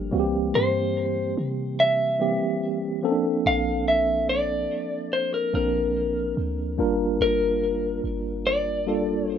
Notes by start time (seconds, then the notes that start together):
Already playing: G1 F3 G3 A#3 D4 G4
0.11 C2 E3 G3 A#3 C4 F#4
0.20 G4
0.54 G2 C5
1.38 C3
1.80 E5
2.19 E3 G3 A#3 C4 G4
3.03 F3 A#3 C4 C#4 A4
3.11 D4
3.46 A#1 F5
3.88 E5
4.29 D5
5.13 C5
5.34 A#4
5.53 A#1 F3 A#3 C4 D4 A#4
6.37 D2
6.78 G1 G3 A#3 D4 F4 A#4
7.21 G1 A#4
8.04 G1
8.47 D5
8.86 G3 A#3 D4 F4 A4
9.29 C5